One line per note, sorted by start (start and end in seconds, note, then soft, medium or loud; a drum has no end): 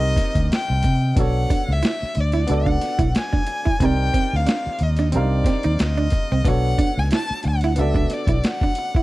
0.00 0.13 C2 loud
0.00 1.19 C4 medium
0.00 1.19 D#4 medium
0.00 1.18 G4 medium
0.00 1.19 A#4 medium
0.00 1.19 D5 medium
0.00 0.49 D#5 loud
0.00 1.00 D#5 medium
0.16 muted fingered electric bass stroke soft
0.16 kick medium
0.16 snare soft
0.16 closed hi-hat medium
0.35 0.48 D2 loud
0.35 kick loud
0.35 closed hi-hat medium
0.51 1.15 G5 loud
0.51 muted fingered electric bass stroke soft
0.51 snare loud
0.51 closed hi-hat medium
0.70 0.82 C2 medium
0.83 1.12 C3 loud
0.83 kick medium
0.83 closed hi-hat medium
1.15 1.44 B1 medium
1.15 2.29 B3 medium
1.15 2.29 D4 medium
1.15 2.30 F#4 medium
1.15 2.30 A4 medium
1.15 kick loud
1.15 closed hi-hat medium
1.20 2.31 C#5 medium
1.20 1.74 F#5 loud
1.50 1.62 D4 medium
1.50 kick medium
1.50 closed hi-hat medium
1.69 1.81 C#2 medium
1.69 2.22 E5 loud
1.69 snare soft
1.83 1.94 E4 medium
1.83 snare loud
1.83 closed hi-hat medium
2.02 muted fingered electric bass stroke medium
2.02 snare soft
2.15 2.44 D2 loud
2.15 muted hollow-body jazz guitar stroke soft
2.15 closed hi-hat medium
2.20 2.55 D5 medium
2.32 2.43 E4 medium
2.32 snare soft
2.32 closed hi-hat medium
2.47 2.77 C#2 loud
2.47 3.61 B3 medium
2.47 3.61 D4 medium
2.47 3.62 F#4 medium
2.47 3.62 A4 medium
2.47 closed hi-hat medium
2.51 3.63 D5 medium
2.51 3.17 F#5 loud
2.66 2.76 D4 medium
2.66 kick medium
2.81 muted hollow-body jazz guitar stroke soft
2.81 snare soft
2.81 closed hi-hat medium
2.99 3.12 B1 loud
2.99 3.08 E4 medium
2.99 kick loud
2.99 closed hi-hat medium
3.15 snare loud
3.15 closed hi-hat medium
3.19 3.86 G#5 loud
3.33 3.42 D4 medium
3.33 kick loud
3.47 muted hollow-body jazz guitar stroke soft
3.47 closed hi-hat medium
3.65 3.75 E4 medium
3.65 kick loud
3.80 4.08 C2 loud
3.80 4.93 C4 medium
3.80 3.93 C4 medium
3.80 4.94 D#4 medium
3.80 4.94 G4 medium
3.80 4.95 A#4 medium
3.80 kick loud
3.80 closed hi-hat medium
3.85 4.95 D5 medium
3.85 4.37 G5 loud
4.14 4.25 C4 medium
4.14 kick medium
4.14 closed hi-hat medium
4.33 4.45 D2 medium
4.33 4.84 F5 loud
4.33 snare soft
4.46 4.58 D4 medium
4.46 snare loud
4.46 closed hi-hat medium
4.66 muted fingered electric bass stroke soft
4.66 snare soft
4.79 5.15 D#2 loud
4.79 muted hollow-body jazz guitar stroke soft
4.79 closed hi-hat medium
4.83 5.14 D#5 medium
4.97 5.08 D4 medium
4.97 snare soft
4.97 closed hi-hat soft
5.12 5.41 C2 medium
5.12 6.25 C4 medium
5.12 5.20 D4 medium
5.12 6.26 G4 medium
5.12 6.27 A#4 medium
5.12 muted hollow-body jazz guitar stroke soft
5.12 closed hi-hat medium
5.16 6.29 D#4 medium
5.16 5.84 D5 medium
5.16 6.27 F5 medium
5.44 5.58 C4 medium
5.44 kick loud
5.44 snare soft
5.44 closed hi-hat medium
5.63 5.77 D#2 loud
5.63 5.73 D#4 medium
5.63 closed hi-hat medium
5.79 6.07 D2 medium
5.79 6.49 D#5 medium
5.79 snare loud
5.79 closed hi-hat medium
5.97 6.06 D4 medium
6.10 muted hollow-body jazz guitar stroke soft
6.10 kick medium
6.10 closed hi-hat medium
6.32 6.43 C2 medium
6.32 6.40 C4 medium
6.44 6.73 B1 loud
6.44 7.57 B3 medium
6.44 7.58 D4 medium
6.44 7.58 F#4 medium
6.44 7.59 A4 medium
6.44 7.00 F#5 loud
6.44 kick loud
6.44 closed hi-hat medium
6.49 7.59 C#5 medium
6.78 6.90 D4 medium
6.78 kick medium
6.78 closed hi-hat medium
6.98 7.09 C#2 loud
6.98 7.12 G#5 loud
6.98 snare soft
7.11 7.23 E4 medium
7.11 7.43 A5 loud
7.11 snare loud
7.11 closed hi-hat medium
7.30 muted fingered electric bass stroke soft
7.30 snare soft
7.43 7.80 D2 loud
7.43 muted hollow-body jazz guitar stroke soft
7.43 closed hi-hat medium
7.47 7.81 F#5 medium
7.61 7.72 E4 medium
7.61 snare soft
7.61 closed hi-hat medium
7.76 8.05 C#2 medium
7.76 8.89 B3 medium
7.76 8.89 D4 medium
7.76 8.90 F#4 medium
7.76 8.90 A4 medium
7.76 8.15 E5 medium
7.76 closed hi-hat medium
7.81 8.91 D5 medium
7.94 8.04 D4 medium
7.94 kick loud
8.10 8.47 D5 medium
8.10 muted hollow-body jazz guitar stroke soft
8.10 snare soft
8.10 closed hi-hat medium
8.27 8.40 B1 loud
8.27 8.37 E4 medium
8.27 kick loud
8.27 closed hi-hat medium
8.44 9.03 F#5 loud
8.44 snare loud
8.44 closed hi-hat medium
8.61 8.71 D4 medium
8.61 kick loud
8.75 muted hollow-body jazz guitar stroke soft
8.75 closed hi-hat medium
8.95 9.03 E4 medium
8.95 kick loud